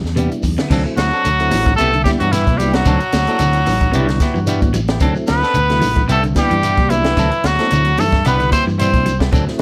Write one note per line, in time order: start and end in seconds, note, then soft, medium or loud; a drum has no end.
0.03 0.27 E2 loud
0.03 snare soft
0.03 shekere soft
0.16 0.36 C3 medium
0.16 0.43 G3 medium
0.16 0.31 G3 medium
0.16 0.43 B3 medium
0.16 0.31 B3 medium
0.16 0.43 D4 medium
0.16 0.44 E4 medium
0.16 0.31 E4 medium
0.16 0.31 G4 medium
0.16 closed hi-hat medium
0.16 high conga medium
0.16 shekere medium
0.30 muted fingered electric bass stroke soft
0.30 muted clean electric guitar stroke medium
0.30 closed hi-hat soft
0.30 high conga medium
0.30 shekere soft
0.43 0.57 E2 medium
0.43 muted clean electric guitar stroke soft
0.43 kick medium
0.43 open hi-hat medium
0.43 low conga medium
0.43 shekere medium
0.58 0.67 D3 medium
0.58 0.71 B3 medium
0.58 0.71 E4 medium
0.58 muted clean electric guitar stroke medium
0.58 snare medium
0.58 closed hi-hat soft
0.58 shekere soft
0.70 0.84 D2 loud
0.70 0.90 C3 medium
0.70 0.86 F#3 medium
0.70 0.85 C4 medium
0.70 0.85 D4 medium
0.70 0.84 A4 medium
0.70 kick medium
0.70 crash medium
0.70 low conga medium
0.70 shekere medium
0.85 1.12 F#3 medium
0.85 1.12 A3 medium
0.85 1.12 C4 medium
0.85 1.12 E4 medium
0.85 muted clean electric guitar stroke medium
0.85 shekere soft
0.97 1.10 D2 medium
0.97 1.75 F#3 medium
0.97 1.75 F#4 loud
0.97 muted clean electric guitar stroke soft
0.97 snare medium
0.97 closed hi-hat soft
0.97 high conga medium
0.97 shekere medium
1.13 1.28 C4 medium
1.13 1.28 D4 medium
1.13 1.28 A4 medium
1.13 shekere soft
1.25 1.49 D2 loud
1.25 1.45 D3 medium
1.25 closed hi-hat medium
1.25 shekere medium
1.39 1.72 F#3 medium
1.39 1.72 A3 medium
1.39 1.72 C4 medium
1.39 1.72 E4 loud
1.39 muted clean electric guitar stroke soft
1.39 closed hi-hat soft
1.39 shekere soft
1.51 1.76 A1 medium
1.51 1.72 E3 medium
1.51 muted clean electric guitar stroke soft
1.51 open hi-hat medium
1.51 high conga loud
1.51 low conga medium
1.51 shekere medium
1.66 muted clean electric guitar stroke soft
1.66 kick medium
1.66 closed hi-hat soft
1.66 low conga medium
1.66 shekere soft
1.76 2.03 C2 loud
1.76 1.90 C3 medium
1.76 1.94 G3 medium
1.76 2.03 A3 medium
1.76 1.94 B3 loud
1.76 2.02 A4 loud
1.76 closed hi-hat medium
1.76 high conga medium
1.76 shekere medium
1.80 1.94 E4 medium
1.80 1.93 G4 loud
1.93 2.14 D3 medium
1.93 muted clean electric guitar stroke soft
1.93 closed hi-hat soft
1.93 shekere soft
2.04 2.11 G3 medium
2.04 2.23 G3 medium
2.04 2.32 G3 medium
2.04 2.32 B3 medium
2.04 2.23 B3 medium
2.04 2.32 D4 medium
2.04 2.32 E4 medium
2.04 2.23 E4 medium
2.04 2.11 G4 medium
2.04 2.23 G4 medium
2.04 kick medium
2.04 snare soft
2.04 closed hi-hat medium
2.04 high conga loud
2.04 shekere medium
2.20 2.49 G2 medium
2.20 2.40 E3 medium
2.20 2.33 F#3 medium
2.20 2.33 F#4 loud
2.20 closed hi-hat soft
2.20 shekere soft
2.32 2.59 E3 medium
2.32 2.47 G3 medium
2.32 2.47 B3 medium
2.32 2.59 E4 loud
2.32 2.47 E4 medium
2.32 2.47 G4 medium
2.32 snare soft
2.32 closed hi-hat medium
2.32 shekere medium
2.47 2.82 C2 medium
2.47 muted clean electric guitar stroke soft
2.47 kick medium
2.47 closed hi-hat soft
2.47 high conga medium
2.47 shekere soft
2.57 2.79 F#3 medium
2.57 2.74 G3 medium
2.57 2.86 G3 medium
2.57 2.87 B3 medium
2.57 2.87 D4 medium
2.57 2.87 E4 medium
2.57 2.76 G4 medium
2.57 muted clean electric guitar stroke soft
2.57 closed hi-hat medium
2.57 high conga medium
2.57 shekere medium
2.73 4.74 F#3 medium
2.73 2.86 B3 soft
2.73 2.87 E4 soft
2.73 4.75 F#4 medium
2.73 snare medium
2.73 closed hi-hat soft
2.73 shekere soft
2.85 2.99 D2 loud
2.85 3.06 C3 medium
2.85 3.01 F#3 medium
2.85 3.01 C4 medium
2.85 3.01 D4 medium
2.85 3.01 A4 medium
2.85 kick medium
2.85 closed hi-hat medium
2.85 low conga medium
2.85 shekere loud
3.00 muted clean electric guitar stroke soft
3.00 closed hi-hat soft
3.00 shekere soft
3.13 3.26 D2 medium
3.13 muted clean electric guitar stroke soft
3.13 snare medium
3.13 closed hi-hat medium
3.13 high conga medium
3.13 shekere medium
3.27 3.60 F#3 medium
3.27 3.60 A3 medium
3.27 3.60 C4 medium
3.27 3.43 C4 soft
3.27 3.43 D4 medium
3.27 3.61 E4 medium
3.27 3.43 A4 medium
3.27 closed hi-hat soft
3.27 high conga medium
3.27 shekere soft
3.39 3.64 D2 loud
3.39 3.60 D3 medium
3.39 closed hi-hat medium
3.39 shekere loud
3.53 muted clean electric guitar stroke medium
3.53 closed hi-hat soft
3.53 shekere soft
3.66 3.90 A1 medium
3.66 3.86 E3 medium
3.66 muted clean electric guitar stroke soft
3.66 open hi-hat medium
3.66 high conga loud
3.66 low conga medium
3.66 shekere medium
3.81 muted clean electric guitar stroke soft
3.81 kick medium
3.81 closed hi-hat soft
3.81 low conga medium
3.81 shekere soft
3.92 4.18 C2 loud
3.92 4.03 C3 medium
3.92 4.19 G3 medium
3.92 4.09 G3 loud
3.92 4.19 B3 medium
3.92 4.09 B3 medium
3.92 4.20 D4 medium
3.92 4.20 E4 loud
3.92 4.09 E4 loud
3.92 4.09 G4 loud
3.92 closed hi-hat medium
3.92 shekere medium
4.07 4.28 D3 medium
4.07 muted clean electric guitar stroke soft
4.07 snare soft
4.07 closed hi-hat soft
4.07 shekere soft
4.20 4.38 B3 medium
4.20 4.39 E4 medium
4.20 4.39 G4 medium
4.20 muted clean electric guitar stroke medium
4.20 kick medium
4.20 snare soft
4.20 closed hi-hat medium
4.20 high conga medium
4.20 shekere medium
4.34 4.64 G2 medium
4.34 4.55 E3 medium
4.34 shekere soft
4.45 4.80 G3 medium
4.45 4.62 G3 medium
4.45 4.81 B3 medium
4.45 4.62 B3 medium
4.45 4.81 D4 medium
4.45 4.81 E4 medium
4.45 4.62 E4 medium
4.45 4.62 G4 medium
4.45 closed hi-hat medium
4.45 shekere loud
4.62 4.97 A1 medium
4.62 muted clean electric guitar stroke soft
4.62 kick medium
4.62 closed hi-hat soft
4.62 high conga medium
4.62 shekere soft
4.74 4.94 F#3 medium
4.74 muted clean electric guitar stroke soft
4.74 closed hi-hat soft
4.74 high conga medium
4.74 shekere medium
4.88 5.01 B3 medium
4.88 5.02 E4 medium
4.88 5.02 G4 medium
4.88 snare medium
4.88 closed hi-hat soft
4.88 shekere soft
5.00 5.14 D2 medium
5.00 5.21 C3 medium
5.00 5.16 F#3 medium
5.00 5.16 C4 medium
5.00 5.16 D4 medium
5.00 5.15 A4 medium
5.00 kick medium
5.00 closed hi-hat medium
5.00 low conga medium
5.00 shekere medium
5.15 5.42 F#3 medium
5.15 5.43 A3 medium
5.15 5.43 C4 medium
5.15 5.43 E4 medium
5.15 muted clean electric guitar stroke soft
5.15 shekere soft
5.27 5.42 D2 medium
5.27 6.05 B3 medium
5.27 6.05 B4 loud
5.27 muted clean electric guitar stroke soft
5.27 snare medium
5.27 closed hi-hat soft
5.27 high conga medium
5.27 shekere medium
5.42 5.59 C4 soft
5.42 5.59 D4 medium
5.42 5.59 A4 medium
5.42 snare soft
5.42 shekere soft
5.54 5.80 D2 loud
5.54 muted clean electric guitar stroke medium
5.54 closed hi-hat medium
5.54 shekere medium
5.69 6.03 C3 medium
5.69 6.02 F#3 medium
5.69 6.03 A3 medium
5.69 6.03 E4 medium
5.69 muted clean electric guitar stroke soft
5.69 snare soft
5.69 closed hi-hat soft
5.69 shekere soft
5.81 6.07 A1 medium
5.81 6.01 E3 medium
5.81 muted clean electric guitar stroke soft
5.81 open hi-hat medium
5.81 high conga medium
5.81 low conga medium
5.81 shekere medium
5.96 muted clean electric guitar stroke soft
5.96 kick medium
5.96 closed hi-hat soft
5.96 low conga medium
5.96 shekere soft
6.08 6.33 C2 loud
6.08 6.19 C3 medium
6.08 6.24 G3 medium
6.08 6.23 B3 medium
6.08 6.23 E4 medium
6.08 6.22 G4 loud
6.08 6.23 A4 medium
6.08 closed hi-hat medium
6.08 shekere medium
6.12 6.24 A3 medium
6.23 6.44 D3 medium
6.23 muted clean electric guitar stroke soft
6.23 closed hi-hat soft
6.23 shekere soft
6.35 6.63 G3 medium
6.35 6.53 G3 medium
6.35 6.92 G3 medium
6.35 6.63 B3 medium
6.35 6.53 B3 medium
6.35 6.63 D4 medium
6.35 6.63 E4 medium
6.35 6.54 E4 medium
6.35 6.54 G4 medium
6.35 6.91 G4 medium
6.35 kick medium
6.35 snare soft
6.35 closed hi-hat medium
6.35 high conga medium
6.35 shekere medium
6.50 6.79 G2 medium
6.50 6.71 E3 medium
6.50 closed hi-hat soft
6.50 shekere soft
6.63 6.78 G3 medium
6.63 6.78 B3 medium
6.63 6.77 E4 medium
6.63 6.77 G4 medium
6.63 closed hi-hat medium
6.63 shekere medium
6.77 7.12 C2 medium
6.77 muted clean electric guitar stroke soft
6.77 kick medium
6.77 closed hi-hat soft
6.77 high conga medium
6.77 shekere soft
6.90 7.47 E3 medium
6.90 7.11 F#3 medium
6.90 7.17 G3 medium
6.90 7.18 B3 medium
6.90 7.18 D4 medium
6.90 7.48 E4 medium
6.90 7.18 E4 loud
6.90 muted clean electric guitar stroke soft
6.90 closed hi-hat medium
6.90 high conga medium
6.90 shekere medium
7.04 7.18 B3 soft
7.04 7.18 E4 soft
7.04 7.17 G4 medium
7.04 snare medium
7.04 closed hi-hat soft
7.04 shekere soft
7.17 7.30 D2 loud
7.17 7.38 C3 medium
7.17 7.32 F#3 medium
7.17 7.32 C4 medium
7.17 7.32 D4 medium
7.17 7.32 A4 medium
7.17 kick medium
7.17 snare soft
7.17 closed hi-hat medium
7.17 low conga medium
7.17 shekere medium
7.32 muted clean electric guitar stroke soft
7.32 closed hi-hat soft
7.32 shekere soft
7.44 7.57 D2 medium
7.44 8.01 F#3 medium
7.44 8.01 F#4 loud
7.44 muted clean electric guitar stroke soft
7.44 snare medium
7.44 closed hi-hat medium
7.44 high conga loud
7.44 shekere medium
7.58 7.92 F#3 medium
7.58 7.92 A3 medium
7.58 7.92 C4 medium
7.58 7.75 C4 soft
7.58 7.75 D4 soft
7.58 7.92 E4 medium
7.58 7.74 A4 medium
7.58 snare soft
7.58 closed hi-hat soft
7.58 high conga medium
7.58 shekere soft
7.71 7.95 D2 loud
7.71 7.92 D3 medium
7.71 closed hi-hat medium
7.71 shekere medium
7.85 muted clean electric guitar stroke soft
7.85 closed hi-hat soft
7.85 shekere soft
7.97 8.23 G2 medium
7.97 8.19 E3 medium
7.97 8.24 A3 medium
7.97 8.26 A4 loud
7.97 muted clean electric guitar stroke soft
7.97 open hi-hat medium
7.97 high conga loud
7.97 low conga medium
7.97 shekere medium
8.12 muted clean electric guitar stroke soft
8.12 kick medium
8.12 snare soft
8.12 closed hi-hat soft
8.12 shekere soft
8.25 8.49 C2 medium
8.25 8.36 C3 medium
8.25 8.51 G3 medium
8.25 8.40 G3 medium
8.25 8.50 B3 medium
8.25 8.51 B3 medium
8.25 8.39 B3 medium
8.25 8.52 D4 medium
8.25 8.38 E4 medium
8.25 8.52 E4 medium
8.25 8.38 G4 medium
8.25 8.51 B4 loud
8.25 closed hi-hat medium
8.25 shekere medium
8.39 8.60 D3 medium
8.39 muted clean electric guitar stroke soft
8.39 closed hi-hat soft
8.39 shekere soft
8.51 8.69 G3 medium
8.51 8.69 B3 medium
8.51 8.64 C4 medium
8.51 8.69 E4 medium
8.51 8.69 G4 medium
8.51 8.64 C5 loud
8.51 kick medium
8.51 snare soft
8.51 closed hi-hat medium
8.51 high conga medium
8.51 shekere medium
8.67 8.95 G2 medium
8.67 8.87 E3 medium
8.67 shekere soft
8.78 8.93 G3 medium
8.78 9.13 G3 medium
8.78 8.92 B3 medium
8.78 9.13 C4 medium
8.78 9.18 C4 medium
8.78 9.13 D4 medium
8.78 8.92 E4 medium
8.78 9.13 E4 medium
8.78 9.18 C5 loud
8.78 muted clean electric guitar stroke medium
8.78 closed hi-hat medium
8.78 shekere medium
8.93 9.28 C2 loud
8.93 muted clean electric guitar stroke soft
8.93 kick medium
8.93 closed hi-hat soft
8.93 high conga medium
8.93 shekere soft
9.06 9.26 F#3 medium
9.06 muted clean electric guitar stroke soft
9.06 closed hi-hat medium
9.06 shekere medium
9.19 9.32 B3 soft
9.19 9.32 E4 soft
9.19 9.32 G4 soft
9.19 kick medium
9.19 snare medium
9.19 closed hi-hat soft
9.19 shekere soft
9.32 9.46 D2 medium
9.32 9.53 C3 medium
9.32 9.47 F#3 medium
9.32 9.46 C4 medium
9.32 9.46 D4 medium
9.32 9.46 A4 medium
9.32 kick medium
9.32 closed hi-hat medium
9.32 low conga medium
9.32 shekere medium
9.47 9.62 F#3 medium
9.47 9.62 A3 medium
9.47 9.62 C4 medium
9.47 9.62 E4 medium
9.47 muted clean electric guitar stroke soft
9.47 snare soft
9.47 shekere soft